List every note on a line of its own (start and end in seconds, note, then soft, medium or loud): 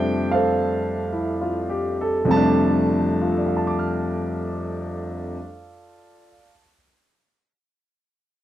0.00 2.23 F2 medium
0.00 2.26 C3 medium
0.00 2.27 F3 soft
0.00 2.29 G3 soft
0.00 2.29 A3 soft
0.00 2.30 D4 medium
0.00 0.31 G4 medium
0.00 0.30 A4 medium
0.00 0.33 C5 medium
0.00 1.11 E5 medium
0.00 0.29 G5 loud
0.31 1.96 A4 medium
0.31 1.96 C5 medium
0.31 1.94 F5 medium
1.12 1.57 E4 soft
1.41 1.95 F4 medium
1.69 2.16 G4 medium
2.01 2.47 A4 medium
2.25 5.34 F2 medium
2.25 5.37 C3 medium
2.25 5.38 F3 medium
2.31 5.41 G3 medium
2.31 5.44 A3 medium
2.31 3.55 A5 medium
2.36 5.46 D4 medium
3.22 6.27 F4 soft
3.30 6.35 A4 soft
3.38 6.43 D5 soft
3.46 6.52 F5 soft
3.57 6.62 A5 soft
3.67 6.73 D6 soft
3.79 6.85 F6 soft